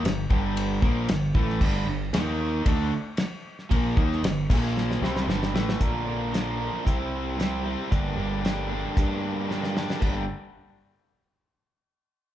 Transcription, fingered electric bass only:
0, 0, Header, 1, 2, 480
1, 0, Start_track
1, 0, Key_signature, -2, "minor"
1, 0, Tempo, 525394
1, 1474, Time_signature, 4, 2, 24, 8
1, 11278, End_track
2, 0, Start_track
2, 0, Title_t, "Fingered electric bass"
2, 0, Program_c, 0, 33
2, 32, Note_on_c, 0, 31, 85
2, 256, Note_off_c, 0, 31, 0
2, 275, Note_on_c, 0, 31, 93
2, 721, Note_off_c, 0, 31, 0
2, 751, Note_on_c, 0, 34, 105
2, 976, Note_off_c, 0, 34, 0
2, 1001, Note_on_c, 0, 31, 89
2, 1221, Note_off_c, 0, 31, 0
2, 1233, Note_on_c, 0, 33, 100
2, 1456, Note_off_c, 0, 33, 0
2, 1473, Note_on_c, 0, 31, 97
2, 1696, Note_off_c, 0, 31, 0
2, 1710, Note_on_c, 0, 31, 82
2, 1934, Note_off_c, 0, 31, 0
2, 1948, Note_on_c, 0, 39, 102
2, 2395, Note_off_c, 0, 39, 0
2, 2430, Note_on_c, 0, 38, 96
2, 2654, Note_off_c, 0, 38, 0
2, 3393, Note_on_c, 0, 34, 99
2, 3614, Note_off_c, 0, 34, 0
2, 3627, Note_on_c, 0, 39, 99
2, 3851, Note_off_c, 0, 39, 0
2, 3862, Note_on_c, 0, 31, 79
2, 4088, Note_off_c, 0, 31, 0
2, 4109, Note_on_c, 0, 34, 93
2, 4555, Note_off_c, 0, 34, 0
2, 4586, Note_on_c, 0, 36, 101
2, 4808, Note_off_c, 0, 36, 0
2, 4814, Note_on_c, 0, 31, 101
2, 5044, Note_off_c, 0, 31, 0
2, 5061, Note_on_c, 0, 33, 94
2, 5288, Note_off_c, 0, 33, 0
2, 5305, Note_on_c, 0, 34, 91
2, 6113, Note_off_c, 0, 34, 0
2, 6274, Note_on_c, 0, 36, 95
2, 7080, Note_off_c, 0, 36, 0
2, 7234, Note_on_c, 0, 31, 92
2, 7435, Note_off_c, 0, 31, 0
2, 7473, Note_on_c, 0, 31, 80
2, 8078, Note_off_c, 0, 31, 0
2, 8197, Note_on_c, 0, 43, 93
2, 9003, Note_off_c, 0, 43, 0
2, 9149, Note_on_c, 0, 31, 97
2, 9376, Note_off_c, 0, 31, 0
2, 11278, End_track
0, 0, End_of_file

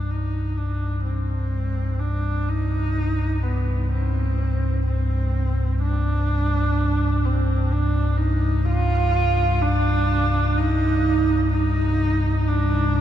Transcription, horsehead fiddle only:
0, 0, Header, 1, 2, 480
1, 0, Start_track
1, 0, Key_signature, -3, "minor"
1, 0, Tempo, 952381
1, 53, Time_signature, 4, 2, 24, 8
1, 6556, End_track
2, 0, Start_track
2, 0, Title_t, "Horsehead fiddle"
2, 0, Program_c, 0, 110
2, 0, Note_on_c, 0, 62, 70
2, 50, Note_on_c, 0, 63, 70
2, 58, Note_off_c, 0, 62, 0
2, 289, Note_on_c, 0, 62, 74
2, 296, Note_off_c, 0, 63, 0
2, 522, Note_off_c, 0, 62, 0
2, 525, Note_on_c, 0, 60, 72
2, 1006, Note_on_c, 0, 62, 79
2, 1013, Note_off_c, 0, 60, 0
2, 1251, Note_on_c, 0, 63, 89
2, 1258, Note_off_c, 0, 62, 0
2, 1728, Note_on_c, 0, 59, 73
2, 1736, Note_off_c, 0, 63, 0
2, 1971, Note_off_c, 0, 59, 0
2, 1975, Note_on_c, 0, 60, 76
2, 2434, Note_off_c, 0, 60, 0
2, 2449, Note_on_c, 0, 60, 73
2, 2911, Note_off_c, 0, 60, 0
2, 2932, Note_on_c, 0, 62, 87
2, 3653, Note_on_c, 0, 60, 72
2, 3661, Note_off_c, 0, 62, 0
2, 3889, Note_on_c, 0, 62, 76
2, 3897, Note_off_c, 0, 60, 0
2, 4119, Note_on_c, 0, 63, 78
2, 4126, Note_off_c, 0, 62, 0
2, 4359, Note_on_c, 0, 65, 89
2, 4367, Note_off_c, 0, 63, 0
2, 4848, Note_on_c, 0, 62, 92
2, 4855, Note_off_c, 0, 65, 0
2, 5328, Note_on_c, 0, 63, 86
2, 5336, Note_off_c, 0, 62, 0
2, 5803, Note_off_c, 0, 63, 0
2, 5806, Note_on_c, 0, 63, 87
2, 6284, Note_on_c, 0, 62, 77
2, 6292, Note_off_c, 0, 63, 0
2, 6556, Note_off_c, 0, 62, 0
2, 6556, End_track
0, 0, End_of_file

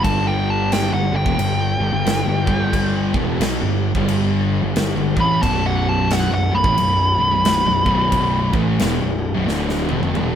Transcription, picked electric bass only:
0, 0, Header, 1, 2, 480
1, 0, Start_track
1, 0, Key_signature, 2, "minor"
1, 0, Tempo, 673401
1, 31, Time_signature, 4, 2, 24, 8
1, 7380, End_track
2, 0, Start_track
2, 0, Title_t, "Picked electric bass"
2, 0, Program_c, 0, 34
2, 32, Note_on_c, 0, 31, 94
2, 630, Note_off_c, 0, 31, 0
2, 656, Note_on_c, 0, 31, 81
2, 793, Note_off_c, 0, 31, 0
2, 797, Note_on_c, 0, 31, 82
2, 888, Note_off_c, 0, 31, 0
2, 899, Note_on_c, 0, 28, 96
2, 978, Note_off_c, 0, 28, 0
2, 982, Note_on_c, 0, 31, 83
2, 1259, Note_off_c, 0, 31, 0
2, 1272, Note_on_c, 0, 31, 86
2, 1365, Note_off_c, 0, 31, 0
2, 1371, Note_on_c, 0, 31, 79
2, 1454, Note_off_c, 0, 31, 0
2, 1459, Note_on_c, 0, 31, 82
2, 1601, Note_off_c, 0, 31, 0
2, 1611, Note_on_c, 0, 31, 83
2, 1751, Note_off_c, 0, 31, 0
2, 1766, Note_on_c, 0, 31, 87
2, 2217, Note_off_c, 0, 31, 0
2, 2242, Note_on_c, 0, 28, 88
2, 2418, Note_off_c, 0, 28, 0
2, 2426, Note_on_c, 0, 35, 92
2, 2565, Note_off_c, 0, 35, 0
2, 2573, Note_on_c, 0, 31, 76
2, 2799, Note_off_c, 0, 31, 0
2, 2814, Note_on_c, 0, 31, 88
2, 3269, Note_off_c, 0, 31, 0
2, 3296, Note_on_c, 0, 31, 89
2, 3385, Note_off_c, 0, 31, 0
2, 3392, Note_on_c, 0, 31, 89
2, 3529, Note_off_c, 0, 31, 0
2, 3535, Note_on_c, 0, 31, 79
2, 3673, Note_off_c, 0, 31, 0
2, 3685, Note_on_c, 0, 33, 96
2, 3859, Note_off_c, 0, 33, 0
2, 3871, Note_on_c, 0, 23, 104
2, 4470, Note_off_c, 0, 23, 0
2, 4500, Note_on_c, 0, 23, 80
2, 4636, Note_off_c, 0, 23, 0
2, 4645, Note_on_c, 0, 23, 91
2, 4733, Note_off_c, 0, 23, 0
2, 4736, Note_on_c, 0, 33, 99
2, 4825, Note_off_c, 0, 33, 0
2, 4834, Note_on_c, 0, 23, 75
2, 5106, Note_off_c, 0, 23, 0
2, 5124, Note_on_c, 0, 23, 80
2, 5212, Note_off_c, 0, 23, 0
2, 5226, Note_on_c, 0, 23, 84
2, 5310, Note_off_c, 0, 23, 0
2, 5320, Note_on_c, 0, 23, 96
2, 5453, Note_off_c, 0, 23, 0
2, 5469, Note_on_c, 0, 23, 90
2, 5601, Note_off_c, 0, 23, 0
2, 5604, Note_on_c, 0, 23, 92
2, 6057, Note_off_c, 0, 23, 0
2, 6084, Note_on_c, 0, 33, 87
2, 6259, Note_off_c, 0, 33, 0
2, 6279, Note_on_c, 0, 28, 92
2, 6413, Note_off_c, 0, 28, 0
2, 6431, Note_on_c, 0, 23, 77
2, 6649, Note_off_c, 0, 23, 0
2, 6667, Note_on_c, 0, 23, 100
2, 6751, Note_off_c, 0, 23, 0
2, 6759, Note_on_c, 0, 26, 107
2, 7029, Note_off_c, 0, 26, 0
2, 7050, Note_on_c, 0, 28, 106
2, 7135, Note_off_c, 0, 28, 0
2, 7147, Note_on_c, 0, 29, 95
2, 7230, Note_off_c, 0, 29, 0
2, 7240, Note_on_c, 0, 28, 108
2, 7373, Note_off_c, 0, 28, 0
2, 7380, End_track
0, 0, End_of_file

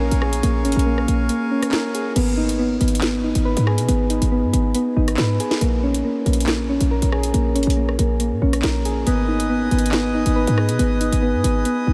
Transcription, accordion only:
0, 0, Header, 1, 2, 480
1, 0, Start_track
1, 0, Tempo, 431655
1, 481, Time_signature, 4, 2, 24, 8
1, 13268, End_track
2, 0, Start_track
2, 0, Title_t, "Accordion"
2, 0, Program_c, 0, 21
2, 0, Note_on_c, 0, 70, 90
2, 0, Note_on_c, 0, 77, 80
2, 0, Note_on_c, 0, 80, 81
2, 0, Note_on_c, 0, 85, 94
2, 2357, Note_off_c, 0, 80, 0
2, 2363, Note_off_c, 0, 70, 0
2, 2363, Note_off_c, 0, 77, 0
2, 2363, Note_off_c, 0, 85, 0
2, 10081, Note_on_c, 0, 71, 89
2, 10081, Note_on_c, 0, 75, 80
2, 10081, Note_on_c, 0, 80, 80
2, 10081, Note_on_c, 0, 87, 100
2, 13268, Note_off_c, 0, 71, 0
2, 13268, Note_off_c, 0, 75, 0
2, 13268, Note_off_c, 0, 80, 0
2, 13268, Note_off_c, 0, 87, 0
2, 13268, End_track
0, 0, End_of_file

